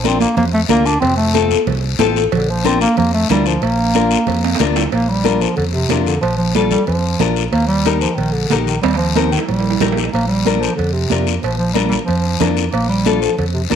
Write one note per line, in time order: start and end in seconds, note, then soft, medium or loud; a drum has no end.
0.00 0.24 A#1 loud
0.00 0.27 D4 medium
0.04 0.20 C4 medium
0.04 0.27 F4 medium
0.04 0.28 A#4 medium
0.04 high conga medium
0.04 short guiro medium
0.21 0.36 A#3 medium
0.21 high conga medium
0.21 short guiro medium
0.37 0.63 F2 loud
0.37 0.44 A#3 loud
0.37 cowbell medium
0.37 low conga medium
0.37 long guiro medium
0.53 0.61 A3 loud
0.69 0.96 D2 medium
0.69 0.87 A#3 loud
0.69 0.92 D4 medium
0.69 0.92 F4 medium
0.69 0.93 A#4 medium
0.69 high conga medium
0.69 low conga medium
0.69 short guiro medium
0.85 1.00 D4 loud
0.85 short guiro medium
1.01 1.54 F1 loud
1.01 1.16 C4 loud
1.01 cowbell loud
1.01 low conga medium
1.01 long guiro medium
1.17 1.48 A3 medium
1.34 1.57 C4 medium
1.34 1.57 F4 medium
1.34 1.58 A4 medium
1.34 high conga medium
1.34 short guiro medium
1.51 high conga medium
1.51 short guiro medium
1.67 1.93 C2 loud
1.67 cowbell medium
1.67 low conga medium
1.67 long guiro medium
1.99 2.26 A1 medium
1.99 2.22 C4 medium
1.99 2.22 F4 medium
1.99 2.22 A4 loud
1.99 high conga medium
1.99 low conga medium
1.99 low timbale medium
1.99 short guiro medium
2.16 short guiro medium
2.32 2.85 A#1 medium
2.32 2.51 D3 medium
2.32 cowbell loud
2.32 low conga medium
2.32 long guiro medium
2.50 2.67 F3 loud
2.64 2.80 C4 loud
2.64 2.87 D4 medium
2.64 2.88 F4 medium
2.64 2.88 A#4 medium
2.64 high conga medium
2.64 short guiro medium
2.81 2.96 A#3 loud
2.81 short guiro medium
2.97 3.23 F2 loud
2.97 3.13 A#3 loud
2.97 cowbell medium
2.97 low conga medium
2.97 long guiro medium
3.14 3.29 A3 loud
3.29 3.56 D2 medium
3.29 3.48 G3 loud
3.29 3.53 D4 medium
3.29 3.53 F4 medium
3.29 3.53 A#4 medium
3.29 high conga medium
3.29 low conga medium
3.29 low timbale medium
3.29 short guiro medium
3.46 3.64 F3 loud
3.46 short guiro medium
3.62 4.14 A#1 medium
3.62 4.76 A#3 loud
3.62 cowbell loud
3.62 long guiro medium
3.94 4.18 D4 medium
3.94 4.18 F4 medium
3.94 4.18 A#4 medium
3.94 high conga medium
3.94 short guiro medium
4.11 short guiro medium
4.27 4.54 F2 loud
4.27 cowbell medium
4.27 low conga medium
4.27 long guiro medium
4.44 high timbale medium
4.55 high timbale loud
4.59 4.86 D2 medium
4.59 4.82 D4 medium
4.59 4.83 F4 medium
4.59 4.83 A#4 loud
4.59 high conga medium
4.59 low conga medium
4.59 short guiro medium
4.76 low timbale medium
4.76 short guiro medium
4.92 5.45 A#1 medium
4.92 5.10 A#3 loud
4.92 cowbell loud
4.92 high conga soft
4.92 long guiro medium
5.09 5.43 G3 loud
5.24 5.47 D4 medium
5.24 5.47 F4 medium
5.24 5.48 A#4 medium
5.24 cowbell medium
5.24 high conga medium
5.24 short guiro medium
5.41 5.56 F3 medium
5.41 short guiro medium
5.57 5.84 F2 medium
5.57 5.64 D3 medium
5.57 cowbell medium
5.57 high conga soft
5.57 long guiro medium
5.73 6.04 C3 medium
5.89 6.16 F2 medium
5.89 6.13 D4 medium
5.89 6.13 F4 medium
5.89 6.13 A#4 medium
5.89 cowbell medium
5.89 high conga medium
5.89 low timbale medium
5.89 short guiro medium
6.05 6.20 D3 medium
6.05 short guiro medium
6.21 6.75 A#1 medium
6.21 6.37 F3 loud
6.21 cowbell loud
6.21 high conga soft
6.21 long guiro medium
6.38 6.53 F3 medium
6.55 6.70 G3 medium
6.55 6.78 D4 medium
6.55 6.78 F4 medium
6.55 6.78 A4 medium
6.55 cowbell medium
6.55 high conga medium
6.55 short guiro medium
6.71 6.86 G3 loud
6.71 low conga medium
6.71 short guiro medium
6.86 7.14 F2 loud
6.86 7.32 F3 medium
6.86 cowbell medium
6.86 high conga soft
6.86 long guiro medium
7.20 7.46 A#1 medium
7.20 7.43 D4 medium
7.20 7.43 F4 medium
7.20 7.43 A#4 medium
7.20 cowbell medium
7.20 high conga medium
7.20 low conga medium
7.20 short guiro medium
7.36 short guiro medium
7.51 8.05 D#2 medium
7.51 7.66 A#3 loud
7.51 cowbell loud
7.51 high conga soft
7.51 long guiro medium
7.67 7.98 G3 loud
7.85 8.08 D#4 medium
7.85 8.09 G4 medium
7.85 8.09 A#4 medium
7.85 cowbell medium
7.85 high conga medium
7.85 short guiro medium
8.01 8.17 F3 medium
8.01 short guiro medium
8.16 8.44 A#1 loud
8.16 8.33 D#3 medium
8.16 cowbell medium
8.16 high conga soft
8.16 long guiro medium
8.32 8.48 D3 medium
8.48 8.77 A#1 medium
8.48 8.56 D3 medium
8.48 8.74 D#4 medium
8.48 8.74 G4 medium
8.48 8.74 A#4 medium
8.48 cowbell medium
8.48 high conga medium
8.48 short guiro medium
8.64 8.81 D#3 medium
8.64 short guiro medium
8.81 9.36 D#2 medium
8.81 8.97 G3 loud
8.81 cowbell loud
8.81 high conga soft
8.81 high timbale loud
8.81 long guiro medium
8.94 9.29 F3 medium
8.94 high timbale medium
9.15 9.38 D#4 medium
9.15 9.39 G4 medium
9.15 9.39 A#4 medium
9.15 cowbell medium
9.15 high conga medium
9.15 high timbale medium
9.15 short guiro medium
9.31 9.39 D#3 medium
9.31 short guiro medium
9.38 low timbale medium
9.47 9.75 A#1 medium
9.47 9.93 G3 medium
9.47 cowbell medium
9.47 high conga soft
9.47 long guiro medium
9.60 low timbale medium
9.70 low timbale medium
9.81 10.07 A#1 medium
9.81 10.04 D#4 medium
9.81 10.04 G4 medium
9.81 10.04 A#4 medium
9.81 cowbell medium
9.81 high conga medium
9.81 low conga medium
9.81 low timbale medium
9.81 short guiro medium
9.92 low timbale medium
9.97 short guiro medium
10.03 low timbale medium
10.12 10.66 A#1 loud
10.12 10.27 A#3 medium
10.12 cowbell loud
10.12 high conga soft
10.12 long guiro medium
10.27 10.62 G3 loud
10.45 10.69 D4 medium
10.45 10.69 F4 medium
10.45 10.69 A#4 medium
10.45 cowbell medium
10.45 high conga medium
10.45 short guiro medium
10.60 10.75 F3 loud
10.60 short guiro medium
10.76 11.05 F2 medium
10.76 10.94 D3 medium
10.76 cowbell medium
10.76 high conga soft
10.76 long guiro medium
10.93 11.26 C3 medium
11.10 11.37 F2 medium
11.10 11.33 D4 medium
11.10 11.34 F4 medium
11.10 11.34 A#4 medium
11.10 cowbell medium
11.10 high conga medium
11.10 short guiro medium
11.27 short guiro medium
11.42 11.96 A#1 medium
11.42 11.58 F3 medium
11.42 cowbell loud
11.42 high conga soft
11.42 long guiro medium
11.58 11.73 F3 medium
11.73 11.88 G3 medium
11.73 11.98 D4 medium
11.73 11.98 F4 medium
11.73 11.98 A#4 medium
11.73 cowbell medium
11.73 high conga medium
11.73 short guiro medium
11.89 11.97 G3 medium
11.89 low conga medium
11.89 short guiro medium
12.05 12.35 F2 medium
12.05 12.52 F3 loud
12.05 cowbell medium
12.05 high conga soft
12.05 long guiro medium
12.40 12.67 F2 medium
12.40 12.63 D4 medium
12.40 12.64 F4 medium
12.40 12.64 A#4 medium
12.40 cowbell medium
12.40 high conga medium
12.40 low conga medium
12.40 low timbale medium
12.40 short guiro medium
12.57 short guiro medium
12.72 13.26 A#1 loud
12.72 12.88 A#3 medium
12.72 cowbell loud
12.72 high conga soft
12.72 long guiro medium
12.89 13.22 G3 loud
13.05 13.29 D4 medium
13.05 13.29 F4 medium
13.05 13.29 A4 medium
13.05 cowbell medium
13.05 high conga medium
13.05 short guiro medium
13.21 13.37 F3 medium
13.21 short guiro medium
13.38 13.65 F2 loud
13.38 13.45 D3 medium
13.38 cowbell medium
13.38 high conga soft
13.38 long guiro medium
13.54 13.61 C3 medium
13.70 13.76 F2 medium
13.70 13.76 D3 medium
13.70 13.76 D4 medium
13.70 13.76 F4 medium
13.70 13.76 A#4 medium
13.70 cowbell medium
13.70 high conga medium
13.70 short guiro medium